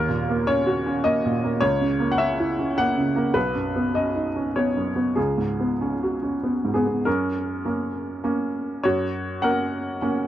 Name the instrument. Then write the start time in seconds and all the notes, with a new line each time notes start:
upright piano
Already playing: D#2 A#4
0.09 A#2
0.29 A#3
0.47 C#4 C#5
0.67 F#4
0.86 C#4
1.04 A#3 D#5
1.25 A#2
1.44 A#3
1.61 C#2 C#5
1.81 C#3
2.00 A#3
2.12 F#5
2.18 C#4 E5
2.40 E4
2.59 C#4
2.78 A#3 F#5
2.98 C#3
3.16 A#3
3.34 B1 B4
3.55 F#2
3.76 B3
3.95 C#4 D#5
4.15 D#4
4.36 C#4
4.56 B3 C#5
4.77 F#2
4.96 B3
5.16 C#2 G#4
5.38 G#2
5.60 B3
5.81 C#4
6.03 F#4
6.23 C#4
6.43 B3
6.65 G#2
6.74 B3 G#4
6.86 B3
7.05 F#2 C#4 A#4
7.65 A#3 C#4
8.24 A#3 C#4
8.83 F#2 F#4 C#5
9.42 A#3 C#4 A#4 F#5
10.02 A#3 C#4